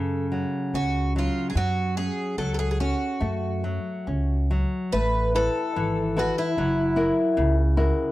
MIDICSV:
0, 0, Header, 1, 4, 480
1, 0, Start_track
1, 0, Key_signature, 3, "minor"
1, 0, Tempo, 831025
1, 899, Time_signature, 2, 2, 24, 8
1, 1859, Tempo, 847458
1, 2828, Key_signature, 3, "major"
1, 3299, Tempo, 805369
1, 4704, End_track
2, 0, Start_track
2, 0, Title_t, "Twelve-string acoustic guitar"
2, 0, Program_c, 0, 25
2, 0, Note_on_c, 0, 69, 50
2, 153, Note_off_c, 0, 69, 0
2, 434, Note_on_c, 0, 66, 74
2, 650, Note_off_c, 0, 66, 0
2, 684, Note_on_c, 0, 65, 67
2, 862, Note_off_c, 0, 65, 0
2, 865, Note_on_c, 0, 68, 60
2, 902, Note_off_c, 0, 68, 0
2, 906, Note_on_c, 0, 66, 93
2, 1136, Note_off_c, 0, 66, 0
2, 1139, Note_on_c, 0, 68, 80
2, 1373, Note_off_c, 0, 68, 0
2, 1375, Note_on_c, 0, 69, 81
2, 1462, Note_off_c, 0, 69, 0
2, 1469, Note_on_c, 0, 69, 63
2, 1493, Note_off_c, 0, 69, 0
2, 1495, Note_on_c, 0, 68, 82
2, 1558, Note_off_c, 0, 68, 0
2, 1565, Note_on_c, 0, 68, 61
2, 1612, Note_off_c, 0, 68, 0
2, 1619, Note_on_c, 0, 66, 67
2, 2566, Note_off_c, 0, 66, 0
2, 2825, Note_on_c, 0, 71, 91
2, 3048, Note_off_c, 0, 71, 0
2, 3070, Note_on_c, 0, 69, 89
2, 3555, Note_on_c, 0, 66, 77
2, 3559, Note_off_c, 0, 69, 0
2, 3661, Note_off_c, 0, 66, 0
2, 3669, Note_on_c, 0, 64, 69
2, 4360, Note_off_c, 0, 64, 0
2, 4704, End_track
3, 0, Start_track
3, 0, Title_t, "Nylon-string guitar"
3, 0, Program_c, 1, 24
3, 0, Note_on_c, 1, 49, 58
3, 183, Note_on_c, 1, 54, 44
3, 417, Note_off_c, 1, 54, 0
3, 430, Note_on_c, 1, 61, 45
3, 657, Note_off_c, 1, 61, 0
3, 669, Note_on_c, 1, 54, 55
3, 874, Note_off_c, 1, 49, 0
3, 890, Note_off_c, 1, 54, 0
3, 897, Note_on_c, 1, 54, 61
3, 1139, Note_on_c, 1, 61, 50
3, 1369, Note_off_c, 1, 54, 0
3, 1370, Note_off_c, 1, 61, 0
3, 1376, Note_on_c, 1, 54, 46
3, 1610, Note_off_c, 1, 54, 0
3, 1619, Note_on_c, 1, 61, 54
3, 1851, Note_on_c, 1, 57, 63
3, 1853, Note_off_c, 1, 61, 0
3, 2097, Note_on_c, 1, 54, 50
3, 2335, Note_off_c, 1, 54, 0
3, 2341, Note_on_c, 1, 61, 44
3, 2579, Note_off_c, 1, 61, 0
3, 2588, Note_on_c, 1, 54, 54
3, 2802, Note_off_c, 1, 57, 0
3, 2822, Note_off_c, 1, 54, 0
3, 2829, Note_on_c, 1, 57, 62
3, 3062, Note_off_c, 1, 57, 0
3, 3064, Note_on_c, 1, 64, 44
3, 3067, Note_on_c, 1, 69, 36
3, 3070, Note_on_c, 1, 71, 47
3, 3300, Note_on_c, 1, 52, 58
3, 3443, Note_off_c, 1, 64, 0
3, 3445, Note_off_c, 1, 69, 0
3, 3447, Note_off_c, 1, 71, 0
3, 3540, Note_on_c, 1, 64, 52
3, 3544, Note_on_c, 1, 69, 49
3, 3549, Note_on_c, 1, 71, 52
3, 3732, Note_off_c, 1, 64, 0
3, 3734, Note_off_c, 1, 69, 0
3, 3737, Note_off_c, 1, 71, 0
3, 3767, Note_off_c, 1, 52, 0
3, 3787, Note_on_c, 1, 54, 68
3, 4015, Note_on_c, 1, 64, 45
3, 4017, Note_on_c, 1, 66, 43
3, 4020, Note_on_c, 1, 70, 45
3, 4249, Note_off_c, 1, 54, 0
3, 4258, Note_on_c, 1, 49, 61
3, 4401, Note_off_c, 1, 64, 0
3, 4403, Note_off_c, 1, 66, 0
3, 4403, Note_off_c, 1, 70, 0
3, 4497, Note_on_c, 1, 66, 46
3, 4498, Note_on_c, 1, 64, 48
3, 4498, Note_on_c, 1, 70, 59
3, 4688, Note_off_c, 1, 64, 0
3, 4689, Note_off_c, 1, 66, 0
3, 4689, Note_off_c, 1, 70, 0
3, 4704, Note_off_c, 1, 49, 0
3, 4704, End_track
4, 0, Start_track
4, 0, Title_t, "Upright bass"
4, 0, Program_c, 2, 32
4, 0, Note_on_c, 2, 42, 77
4, 252, Note_off_c, 2, 42, 0
4, 426, Note_on_c, 2, 37, 74
4, 734, Note_off_c, 2, 37, 0
4, 898, Note_on_c, 2, 42, 83
4, 1209, Note_off_c, 2, 42, 0
4, 1373, Note_on_c, 2, 37, 75
4, 1688, Note_off_c, 2, 37, 0
4, 1857, Note_on_c, 2, 42, 89
4, 2173, Note_off_c, 2, 42, 0
4, 2343, Note_on_c, 2, 37, 81
4, 2658, Note_off_c, 2, 37, 0
4, 2830, Note_on_c, 2, 33, 80
4, 3136, Note_off_c, 2, 33, 0
4, 3301, Note_on_c, 2, 32, 77
4, 3614, Note_off_c, 2, 32, 0
4, 3783, Note_on_c, 2, 30, 75
4, 4094, Note_off_c, 2, 30, 0
4, 4264, Note_on_c, 2, 37, 87
4, 4574, Note_off_c, 2, 37, 0
4, 4704, End_track
0, 0, End_of_file